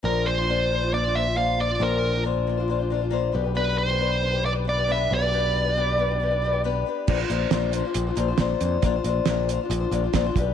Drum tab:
CC |--------|--------|--------|--------|
HH |--------|--------|--------|--------|
SD |--------|--------|--------|--------|
BD |--------|--------|--------|--------|

CC |x-------|--------|
HH |-xxxxxxx|xxxxxxxx|
SD |--o---o-|--o---o-|
BD |o-----o-|o-----oo|